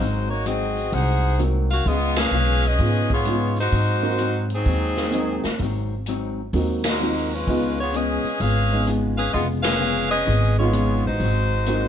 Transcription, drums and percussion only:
0, 0, Header, 1, 2, 480
1, 0, Start_track
1, 0, Tempo, 467290
1, 1915, Time_signature, 4, 2, 24, 8
1, 12204, End_track
2, 0, Start_track
2, 0, Title_t, "Drums"
2, 0, Note_on_c, 9, 36, 34
2, 99, Note_off_c, 9, 36, 0
2, 472, Note_on_c, 9, 42, 56
2, 575, Note_off_c, 9, 42, 0
2, 790, Note_on_c, 9, 46, 31
2, 893, Note_off_c, 9, 46, 0
2, 953, Note_on_c, 9, 46, 45
2, 955, Note_on_c, 9, 36, 32
2, 1056, Note_off_c, 9, 46, 0
2, 1058, Note_off_c, 9, 36, 0
2, 1430, Note_on_c, 9, 42, 48
2, 1533, Note_off_c, 9, 42, 0
2, 1749, Note_on_c, 9, 46, 35
2, 1851, Note_off_c, 9, 46, 0
2, 1908, Note_on_c, 9, 46, 43
2, 1912, Note_on_c, 9, 36, 33
2, 2010, Note_off_c, 9, 46, 0
2, 2014, Note_off_c, 9, 36, 0
2, 2222, Note_on_c, 9, 51, 58
2, 2227, Note_on_c, 9, 38, 76
2, 2325, Note_off_c, 9, 51, 0
2, 2330, Note_off_c, 9, 38, 0
2, 2700, Note_on_c, 9, 46, 36
2, 2803, Note_off_c, 9, 46, 0
2, 2859, Note_on_c, 9, 46, 46
2, 2867, Note_on_c, 9, 36, 32
2, 2962, Note_off_c, 9, 46, 0
2, 2970, Note_off_c, 9, 36, 0
2, 3185, Note_on_c, 9, 36, 44
2, 3288, Note_off_c, 9, 36, 0
2, 3340, Note_on_c, 9, 42, 52
2, 3443, Note_off_c, 9, 42, 0
2, 3660, Note_on_c, 9, 46, 36
2, 3763, Note_off_c, 9, 46, 0
2, 3822, Note_on_c, 9, 46, 42
2, 3825, Note_on_c, 9, 36, 31
2, 3925, Note_off_c, 9, 46, 0
2, 3928, Note_off_c, 9, 36, 0
2, 4299, Note_on_c, 9, 42, 54
2, 4402, Note_off_c, 9, 42, 0
2, 4622, Note_on_c, 9, 46, 37
2, 4724, Note_off_c, 9, 46, 0
2, 4783, Note_on_c, 9, 46, 45
2, 4787, Note_on_c, 9, 36, 36
2, 4886, Note_off_c, 9, 46, 0
2, 4890, Note_off_c, 9, 36, 0
2, 5102, Note_on_c, 9, 38, 44
2, 5205, Note_off_c, 9, 38, 0
2, 5259, Note_on_c, 9, 42, 53
2, 5362, Note_off_c, 9, 42, 0
2, 5581, Note_on_c, 9, 46, 32
2, 5586, Note_on_c, 9, 38, 49
2, 5683, Note_off_c, 9, 46, 0
2, 5688, Note_off_c, 9, 38, 0
2, 5746, Note_on_c, 9, 46, 43
2, 5752, Note_on_c, 9, 36, 31
2, 5849, Note_off_c, 9, 46, 0
2, 5855, Note_off_c, 9, 36, 0
2, 6225, Note_on_c, 9, 42, 50
2, 6328, Note_off_c, 9, 42, 0
2, 6709, Note_on_c, 9, 46, 45
2, 6715, Note_on_c, 9, 36, 34
2, 6812, Note_off_c, 9, 46, 0
2, 6818, Note_off_c, 9, 36, 0
2, 7024, Note_on_c, 9, 51, 60
2, 7029, Note_on_c, 9, 38, 71
2, 7127, Note_off_c, 9, 51, 0
2, 7132, Note_off_c, 9, 38, 0
2, 7511, Note_on_c, 9, 46, 38
2, 7614, Note_off_c, 9, 46, 0
2, 7675, Note_on_c, 9, 46, 43
2, 7677, Note_on_c, 9, 36, 31
2, 7778, Note_off_c, 9, 46, 0
2, 7780, Note_off_c, 9, 36, 0
2, 8156, Note_on_c, 9, 42, 52
2, 8259, Note_off_c, 9, 42, 0
2, 8475, Note_on_c, 9, 46, 33
2, 8578, Note_off_c, 9, 46, 0
2, 8630, Note_on_c, 9, 46, 46
2, 8636, Note_on_c, 9, 36, 32
2, 8733, Note_off_c, 9, 46, 0
2, 8739, Note_off_c, 9, 36, 0
2, 9111, Note_on_c, 9, 42, 57
2, 9214, Note_off_c, 9, 42, 0
2, 9429, Note_on_c, 9, 46, 37
2, 9531, Note_off_c, 9, 46, 0
2, 9587, Note_on_c, 9, 46, 39
2, 9595, Note_on_c, 9, 36, 30
2, 9690, Note_off_c, 9, 46, 0
2, 9698, Note_off_c, 9, 36, 0
2, 9904, Note_on_c, 9, 51, 61
2, 9909, Note_on_c, 9, 38, 72
2, 10006, Note_off_c, 9, 51, 0
2, 10011, Note_off_c, 9, 38, 0
2, 10545, Note_on_c, 9, 46, 45
2, 10553, Note_on_c, 9, 36, 31
2, 10648, Note_off_c, 9, 46, 0
2, 10655, Note_off_c, 9, 36, 0
2, 11023, Note_on_c, 9, 42, 54
2, 11126, Note_off_c, 9, 42, 0
2, 11503, Note_on_c, 9, 46, 48
2, 11510, Note_on_c, 9, 36, 31
2, 11606, Note_off_c, 9, 46, 0
2, 11612, Note_off_c, 9, 36, 0
2, 11981, Note_on_c, 9, 42, 57
2, 12084, Note_off_c, 9, 42, 0
2, 12204, End_track
0, 0, End_of_file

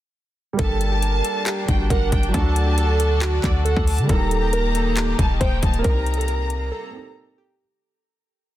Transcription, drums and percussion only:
0, 0, Header, 1, 2, 480
1, 0, Start_track
1, 0, Key_signature, -2, "minor"
1, 0, Tempo, 437956
1, 647, Time_signature, 4, 2, 24, 8
1, 9382, End_track
2, 0, Start_track
2, 0, Title_t, "Drums"
2, 645, Note_on_c, 9, 42, 82
2, 646, Note_on_c, 9, 36, 122
2, 754, Note_off_c, 9, 42, 0
2, 756, Note_off_c, 9, 36, 0
2, 886, Note_on_c, 9, 42, 81
2, 995, Note_off_c, 9, 42, 0
2, 1124, Note_on_c, 9, 42, 88
2, 1233, Note_off_c, 9, 42, 0
2, 1365, Note_on_c, 9, 42, 85
2, 1475, Note_off_c, 9, 42, 0
2, 1604, Note_on_c, 9, 42, 86
2, 1606, Note_on_c, 9, 39, 124
2, 1714, Note_off_c, 9, 42, 0
2, 1716, Note_off_c, 9, 39, 0
2, 1846, Note_on_c, 9, 36, 99
2, 1847, Note_on_c, 9, 42, 88
2, 1955, Note_off_c, 9, 36, 0
2, 1957, Note_off_c, 9, 42, 0
2, 2085, Note_on_c, 9, 36, 97
2, 2087, Note_on_c, 9, 42, 82
2, 2195, Note_off_c, 9, 36, 0
2, 2197, Note_off_c, 9, 42, 0
2, 2326, Note_on_c, 9, 36, 97
2, 2326, Note_on_c, 9, 42, 78
2, 2436, Note_off_c, 9, 36, 0
2, 2436, Note_off_c, 9, 42, 0
2, 2446, Note_on_c, 9, 42, 47
2, 2556, Note_off_c, 9, 42, 0
2, 2566, Note_on_c, 9, 42, 81
2, 2567, Note_on_c, 9, 36, 124
2, 2675, Note_off_c, 9, 42, 0
2, 2676, Note_off_c, 9, 36, 0
2, 2807, Note_on_c, 9, 42, 80
2, 2916, Note_off_c, 9, 42, 0
2, 3044, Note_on_c, 9, 42, 89
2, 3154, Note_off_c, 9, 42, 0
2, 3286, Note_on_c, 9, 42, 86
2, 3395, Note_off_c, 9, 42, 0
2, 3525, Note_on_c, 9, 42, 85
2, 3527, Note_on_c, 9, 39, 120
2, 3634, Note_off_c, 9, 42, 0
2, 3636, Note_off_c, 9, 39, 0
2, 3767, Note_on_c, 9, 36, 99
2, 3767, Note_on_c, 9, 39, 72
2, 3768, Note_on_c, 9, 42, 86
2, 3876, Note_off_c, 9, 36, 0
2, 3876, Note_off_c, 9, 39, 0
2, 3878, Note_off_c, 9, 42, 0
2, 4008, Note_on_c, 9, 42, 80
2, 4117, Note_off_c, 9, 42, 0
2, 4127, Note_on_c, 9, 36, 99
2, 4236, Note_off_c, 9, 36, 0
2, 4247, Note_on_c, 9, 42, 79
2, 4250, Note_on_c, 9, 46, 85
2, 4356, Note_off_c, 9, 42, 0
2, 4359, Note_off_c, 9, 46, 0
2, 4366, Note_on_c, 9, 42, 47
2, 4476, Note_off_c, 9, 42, 0
2, 4486, Note_on_c, 9, 42, 82
2, 4487, Note_on_c, 9, 36, 124
2, 4595, Note_off_c, 9, 42, 0
2, 4596, Note_off_c, 9, 36, 0
2, 4727, Note_on_c, 9, 42, 79
2, 4836, Note_off_c, 9, 42, 0
2, 4965, Note_on_c, 9, 42, 89
2, 5074, Note_off_c, 9, 42, 0
2, 5206, Note_on_c, 9, 42, 86
2, 5315, Note_off_c, 9, 42, 0
2, 5444, Note_on_c, 9, 42, 86
2, 5447, Note_on_c, 9, 39, 117
2, 5554, Note_off_c, 9, 42, 0
2, 5556, Note_off_c, 9, 39, 0
2, 5687, Note_on_c, 9, 36, 100
2, 5688, Note_on_c, 9, 42, 90
2, 5796, Note_off_c, 9, 36, 0
2, 5798, Note_off_c, 9, 42, 0
2, 5926, Note_on_c, 9, 36, 99
2, 5927, Note_on_c, 9, 42, 82
2, 6036, Note_off_c, 9, 36, 0
2, 6037, Note_off_c, 9, 42, 0
2, 6167, Note_on_c, 9, 36, 96
2, 6167, Note_on_c, 9, 42, 83
2, 6276, Note_off_c, 9, 42, 0
2, 6277, Note_off_c, 9, 36, 0
2, 6287, Note_on_c, 9, 42, 46
2, 6396, Note_off_c, 9, 42, 0
2, 6405, Note_on_c, 9, 42, 80
2, 6407, Note_on_c, 9, 36, 124
2, 6515, Note_off_c, 9, 42, 0
2, 6516, Note_off_c, 9, 36, 0
2, 6647, Note_on_c, 9, 42, 47
2, 6726, Note_off_c, 9, 42, 0
2, 6726, Note_on_c, 9, 42, 66
2, 6806, Note_off_c, 9, 42, 0
2, 6806, Note_on_c, 9, 42, 80
2, 6883, Note_off_c, 9, 42, 0
2, 6883, Note_on_c, 9, 42, 89
2, 6993, Note_off_c, 9, 42, 0
2, 7125, Note_on_c, 9, 42, 83
2, 7235, Note_off_c, 9, 42, 0
2, 9382, End_track
0, 0, End_of_file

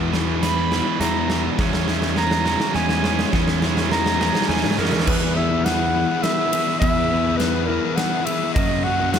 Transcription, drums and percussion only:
0, 0, Header, 1, 2, 480
1, 0, Start_track
1, 0, Tempo, 580833
1, 1311, Time_signature, 3, 2, 24, 8
1, 7595, End_track
2, 0, Start_track
2, 0, Title_t, "Drums"
2, 112, Note_on_c, 9, 38, 92
2, 194, Note_off_c, 9, 38, 0
2, 354, Note_on_c, 9, 38, 91
2, 354, Note_on_c, 9, 42, 74
2, 437, Note_off_c, 9, 38, 0
2, 437, Note_off_c, 9, 42, 0
2, 594, Note_on_c, 9, 38, 95
2, 676, Note_off_c, 9, 38, 0
2, 832, Note_on_c, 9, 38, 84
2, 832, Note_on_c, 9, 42, 70
2, 915, Note_off_c, 9, 38, 0
2, 915, Note_off_c, 9, 42, 0
2, 1072, Note_on_c, 9, 38, 102
2, 1155, Note_off_c, 9, 38, 0
2, 1312, Note_on_c, 9, 36, 111
2, 1312, Note_on_c, 9, 38, 94
2, 1395, Note_off_c, 9, 36, 0
2, 1395, Note_off_c, 9, 38, 0
2, 1431, Note_on_c, 9, 38, 102
2, 1514, Note_off_c, 9, 38, 0
2, 1552, Note_on_c, 9, 38, 102
2, 1635, Note_off_c, 9, 38, 0
2, 1669, Note_on_c, 9, 38, 95
2, 1752, Note_off_c, 9, 38, 0
2, 1788, Note_on_c, 9, 38, 85
2, 1871, Note_off_c, 9, 38, 0
2, 1911, Note_on_c, 9, 38, 103
2, 1994, Note_off_c, 9, 38, 0
2, 2031, Note_on_c, 9, 38, 110
2, 2113, Note_off_c, 9, 38, 0
2, 2148, Note_on_c, 9, 38, 100
2, 2231, Note_off_c, 9, 38, 0
2, 2267, Note_on_c, 9, 38, 95
2, 2350, Note_off_c, 9, 38, 0
2, 2390, Note_on_c, 9, 38, 104
2, 2472, Note_off_c, 9, 38, 0
2, 2512, Note_on_c, 9, 38, 104
2, 2595, Note_off_c, 9, 38, 0
2, 2636, Note_on_c, 9, 38, 112
2, 2718, Note_off_c, 9, 38, 0
2, 2753, Note_on_c, 9, 36, 106
2, 2753, Note_on_c, 9, 38, 104
2, 2836, Note_off_c, 9, 36, 0
2, 2836, Note_off_c, 9, 38, 0
2, 2873, Note_on_c, 9, 38, 111
2, 2956, Note_off_c, 9, 38, 0
2, 2994, Note_on_c, 9, 38, 119
2, 3076, Note_off_c, 9, 38, 0
2, 3115, Note_on_c, 9, 38, 102
2, 3198, Note_off_c, 9, 38, 0
2, 3235, Note_on_c, 9, 38, 107
2, 3318, Note_off_c, 9, 38, 0
2, 3355, Note_on_c, 9, 38, 115
2, 3438, Note_off_c, 9, 38, 0
2, 3479, Note_on_c, 9, 38, 117
2, 3562, Note_off_c, 9, 38, 0
2, 3596, Note_on_c, 9, 38, 117
2, 3655, Note_off_c, 9, 38, 0
2, 3655, Note_on_c, 9, 38, 105
2, 3717, Note_off_c, 9, 38, 0
2, 3717, Note_on_c, 9, 38, 105
2, 3773, Note_off_c, 9, 38, 0
2, 3773, Note_on_c, 9, 38, 106
2, 3834, Note_off_c, 9, 38, 0
2, 3834, Note_on_c, 9, 38, 107
2, 3892, Note_off_c, 9, 38, 0
2, 3892, Note_on_c, 9, 38, 116
2, 3950, Note_off_c, 9, 38, 0
2, 3950, Note_on_c, 9, 38, 111
2, 4008, Note_off_c, 9, 38, 0
2, 4008, Note_on_c, 9, 38, 119
2, 4071, Note_off_c, 9, 38, 0
2, 4071, Note_on_c, 9, 38, 127
2, 4128, Note_off_c, 9, 38, 0
2, 4128, Note_on_c, 9, 38, 120
2, 4192, Note_on_c, 9, 49, 124
2, 4193, Note_on_c, 9, 36, 118
2, 4211, Note_off_c, 9, 38, 0
2, 4275, Note_off_c, 9, 49, 0
2, 4276, Note_off_c, 9, 36, 0
2, 4676, Note_on_c, 9, 38, 86
2, 4676, Note_on_c, 9, 51, 78
2, 4759, Note_off_c, 9, 38, 0
2, 4759, Note_off_c, 9, 51, 0
2, 5153, Note_on_c, 9, 38, 85
2, 5153, Note_on_c, 9, 51, 79
2, 5235, Note_off_c, 9, 38, 0
2, 5235, Note_off_c, 9, 51, 0
2, 5395, Note_on_c, 9, 51, 83
2, 5478, Note_off_c, 9, 51, 0
2, 5634, Note_on_c, 9, 36, 116
2, 5635, Note_on_c, 9, 51, 81
2, 5716, Note_off_c, 9, 36, 0
2, 5718, Note_off_c, 9, 51, 0
2, 6113, Note_on_c, 9, 38, 77
2, 6113, Note_on_c, 9, 51, 74
2, 6196, Note_off_c, 9, 38, 0
2, 6196, Note_off_c, 9, 51, 0
2, 6591, Note_on_c, 9, 38, 86
2, 6591, Note_on_c, 9, 51, 79
2, 6673, Note_off_c, 9, 38, 0
2, 6673, Note_off_c, 9, 51, 0
2, 6831, Note_on_c, 9, 51, 85
2, 6914, Note_off_c, 9, 51, 0
2, 7074, Note_on_c, 9, 36, 117
2, 7075, Note_on_c, 9, 51, 86
2, 7156, Note_off_c, 9, 36, 0
2, 7158, Note_off_c, 9, 51, 0
2, 7552, Note_on_c, 9, 38, 88
2, 7552, Note_on_c, 9, 51, 81
2, 7595, Note_off_c, 9, 38, 0
2, 7595, Note_off_c, 9, 51, 0
2, 7595, End_track
0, 0, End_of_file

